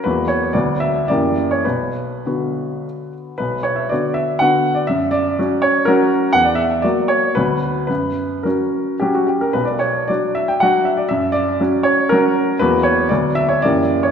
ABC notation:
X:1
M:3/4
L:1/16
Q:1/4=114
K:Bm
V:1 name="Grand piano"
B2 c2 d2 e2 d3 c | B8- B2 z2 | B2 c e d2 e2 f3 d | e2 d4 c2 ^A4 |
f d e2 d2 c2 B4 | B4 ^A4 G F G A | B d c2 d2 e g f2 e d | e2 d4 c2 ^A4 |
B2 c2 d2 e c d3 c |]
V:2 name="Grand piano"
[E,,F,^A,F]4 [D,,F,B,F]4 [F,,E,A,G]4 | B,,,4 [D,B,F]8 | B,,,4 [D,B,F]4 [D,B,F]4 | F,,4 [F,CF]4 [F,CF]4 |
E,,4 [F,^A,F]4 [D,,F,B,F]4 | F,,4 [F,CF]4 [F,CF]4 | B,,,4 [F,DF]4 [F,DF]4 | F,,4 [F,CF]4 [F,CF]4 |
[E,,F,^A,F]4 [D,,F,B,F]4 [F,,E,A,G]4 |]